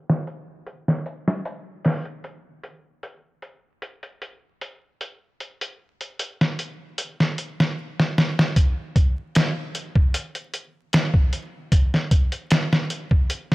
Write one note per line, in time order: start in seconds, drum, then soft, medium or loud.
0.10 snare soft
0.27 closed hi-hat medium
0.66 closed hi-hat medium
0.88 snare soft
1.06 closed hi-hat medium
1.28 snare soft
1.45 closed hi-hat medium
1.85 snare soft
1.85 open hi-hat medium
2.05 closed hi-hat soft
2.24 closed hi-hat medium
2.63 closed hi-hat medium
3.03 closed hi-hat medium
3.42 closed hi-hat medium
3.82 closed hi-hat medium
4.03 closed hi-hat soft
4.22 closed hi-hat medium
4.61 closed hi-hat medium
5.01 closed hi-hat medium
5.40 closed hi-hat medium
5.61 closed hi-hat medium
6.01 closed hi-hat medium
6.19 closed hi-hat medium
6.41 snare soft
6.59 closed hi-hat medium
6.98 closed hi-hat medium
7.20 snare soft
7.38 closed hi-hat medium
7.60 snare soft
8.00 snare soft
8.18 snare medium
8.39 snare medium
8.56 kick loud
8.56 closed hi-hat medium
8.96 kick medium
8.96 closed hi-hat medium
9.35 snare loud
9.35 closed hi-hat medium
9.75 closed hi-hat medium
9.95 kick medium
10.14 closed hi-hat medium
10.35 closed hi-hat soft
10.54 closed hi-hat medium
10.93 snare loud
10.93 closed hi-hat medium
11.14 kick medium
11.33 closed hi-hat medium
11.72 kick loud
11.72 closed hi-hat medium
11.94 snare soft
12.11 kick medium
12.11 closed hi-hat medium
12.32 closed hi-hat soft
12.51 snare loud
12.51 closed hi-hat medium
12.73 snare medium
12.90 closed hi-hat medium
13.11 kick medium
13.30 closed hi-hat medium
13.52 snare soft